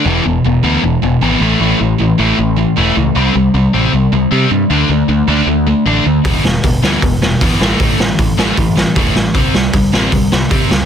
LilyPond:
<<
  \new Staff \with { instrumentName = "Distorted electric guitar" } { \clef bass \time 4/4 \key e \minor \tempo 4 = 155 <e, b, e>8 <e, b,>8 <e, b,>8 <e, b, e>8 <e, b,>8 <e, b,>8 <e, b, e>8 <a, e a>8 | <a, e a>8 <a, e>8 <a, e>8 <a, e a>8 <a, e>8 <a, e>8 <a, e a>8 <a, e>8 | <c g c'>8 <c g>8 <c g>8 <c g c'>8 <c g>8 <c g>8 <c g c'>8 <c g>8 | <d a d'>8 <d a>8 <d a>8 <d a d'>8 <d a>8 <d a>8 <d a d'>8 <d a>8 |
<e, b, e>8 <e, b,>8 <e, b,>8 <e, b, e>8 <e, b,>8 <e, b,>8 <e, b, e>8 <a, e a>8 | <a, e a>8 <a, e>8 <a, e>8 <a, e a>8 <a, e>8 <a, e>8 <a, e a>8 <a, e>8 | <c g c'>8 <c g>8 <c g>8 <c g c'>8 <c g>8 <c g>8 <c g c'>8 <c g>8 | }
  \new Staff \with { instrumentName = "Overdriven electric guitar" } { \clef bass \time 4/4 \key e \minor <e, b, e>8 <e, b,>8 <e, b,>8 <e, b, e>8 <e, b,>8 <e, b,>8 <e, b, e>8 <a, e a>8 | <a, e a>8 <a, e>8 <a, e>8 <a, e a>8 <a, e>8 <a, e>8 <a, e a>8 <a, e>8 | <c g c'>8 <c g>8 <c g>8 <c g c'>8 <c g>8 <c g>8 <c g c'>8 <c g>8 | <d a d'>8 <d a>8 <d a>8 <d a d'>8 <d a>8 <d a>8 <d a d'>8 <d a>8 |
<e, b, e>8 <e, b,>8 <e, b,>8 <e, b, e>8 <e, b,>8 <e, b,>8 <e, b, e>8 <a, e a>8 | <a, e a>8 <a, e>8 <a, e>8 <a, e a>8 <a, e>8 <a, e>8 <a, e a>8 <a, e>8 | <c g c'>8 <c g>8 <c g>8 <c g c'>8 <c g>8 <c g>8 <c g c'>8 <c g>8 | }
  \new Staff \with { instrumentName = "Picked electric bass" } { \clef bass \time 4/4 \key e \minor e,,8 e,,8 e,,8 d,8 e,,8 e,,8 gis,,8 a,,8 | a,,8 a,,8 a,,8 a,,8 a,,4 e,,8 cis,8 | c,8 c,8 c,8 a,,8 c,8 c,8 c8 g,8 | d,8 d,8 d,8 d,8 d,4 a,,8 d,8 |
e,,8 e,,8 e,,8 d,8 e,,8 e,,8 e,8 a,,8 | a,,8 a,,8 a,,8 a,,8 a,,4 e,,8 a,,8 | c,8 c,8 c,8 a,,8 c,8 c,8 c8 cis,8 | }
  \new DrumStaff \with { instrumentName = "Drums" } \drummode { \time 4/4 r4 r4 r4 r4 | r4 r4 r4 r4 | r4 r4 r4 r4 | r4 r4 r4 r4 |
<hho bd>8 sn8 <hho bd>8 sn8 <hho bd>8 sn8 <hho bd>8 sn8 | <hho bd>8 sn8 <hho bd>8 sn8 <hho bd>8 sn8 <hho bd>8 sn8 | <hho bd>8 sn8 <hho bd>8 sn8 <hho bd>8 sn8 <hho bd>8 sn8 | }
>>